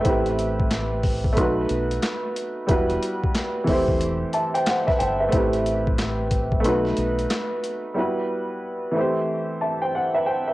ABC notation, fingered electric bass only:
X:1
M:4/4
L:1/8
Q:"Swing 16ths" 1/4=91
K:Em
V:1 name="Fingered electric bass" clef=bass
A,,,4 B,,, B,,, z2 | E,,, z2 E,,,2 z2 G,,, | A,,,4 B,,, B,,, z2 | z8 |]